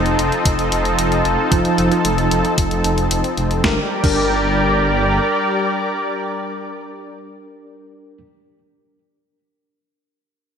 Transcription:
Already playing: detuned saw bass F1, analog synth pad F3 C4 D#4 A4
0.06 closed hi-hat
0.19 detuned saw bass F1, closed hi-hat
0.32 closed hi-hat
0.45 detuned saw bass F1, kick, closed hi-hat
0.59 closed hi-hat
0.72 detuned saw bass F1, closed hi-hat
0.85 closed hi-hat
0.99 detuned saw bass F1, closed hi-hat
1.12 closed hi-hat
1.25 detuned saw bass F1, closed hi-hat
1.52 detuned saw bass F1, tine electric piano F3 D#4 F4 C5, kick, closed hi-hat
1.65 closed hi-hat
1.78 detuned saw bass F1, closed hi-hat
1.91 tine electric piano F3 D#4 F4 A4, closed hi-hat
2.05 detuned saw bass F1, closed hi-hat
2.18 closed hi-hat
2.31 detuned saw bass F1, closed hi-hat
2.45 closed hi-hat
2.58 detuned saw bass F1, kick, closed hi-hat
2.71 closed hi-hat
2.84 detuned saw bass F1, closed hi-hat
2.98 closed hi-hat
3.11 detuned saw bass F1, closed hi-hat
3.24 closed hi-hat
3.37 detuned saw bass F1, closed hi-hat
3.51 closed hi-hat
3.64 detuned saw bass G1, analog synth pad G3 G4 A#4 D5, tine electric piano D4 G4 A#4, kick, snare
4.04 detuned saw bass G1, tine electric piano D4 G4 A#4, kick, crash

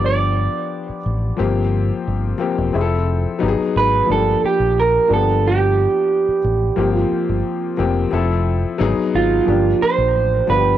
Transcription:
Already playing: fingered electric bass G1, grand piano F3 B3 D4 G4
0.06 clean electric guitar D5
0.89 muted fingered electric bass stroke
1.06 fingered electric bass A1
1.37 fingered electric bass G1, grand piano F3 A#3 C4 G4
1.54 clean electric guitar C5
2.08 fingered electric bass G1
2.38 grand piano F3 A#3 C4 G4
2.58 fingered electric bass E1
2.72 fingered electric bass F1, grand piano F3 C4 E4 G#4
2.81 grand piano A4
3.39 fingered electric bass G#1, grand piano F#3 B3 D#4 G4
3.48 grand piano G#4
3.76 fingered electric bass G#1, clean electric guitar B4
4.06 fingered electric bass G1, grand piano F3 A3 D4 G4
4.12 grand piano A#3, clean electric guitar A4
4.44 clean electric guitar G4, muted fingered electric bass stroke
4.60 fingered electric bass A#1
4.80 clean electric guitar A#4
5.08 fingered electric bass G1, grand piano F3 A#3 D4 G4
5.14 grand piano B3, clean electric guitar A4
5.48 clean electric guitar G4
6.28 muted fingered electric bass stroke
6.44 fingered electric bass A1
6.76 fingered electric bass G1, grand piano F3 A#3 C4 G4
6.96 clean electric guitar F4
7.12 muted fingered electric bass stroke
7.29 fingered electric bass G1
7.77 fingered electric bass F1, grand piano F3 A#3 C4 G4
8.11 fingered electric bass F1, grand piano F3 C4 E4 A4
8.78 fingered electric bass G#1, grand piano F#3 B3 D#4 G#4
9.14 fingered electric bass G#1, clean electric guitar F4
9.46 fingered electric bass G1, grand piano F3 A#3 D4 G4
9.82 clean electric guitar C5, muted fingered electric bass stroke
9.98 fingered electric bass A#1
10.15 fingered electric bass A1
10.47 fingered electric bass G1, grand piano F3 B3 D4 F4, clean electric guitar B4
10.56 grand piano G4

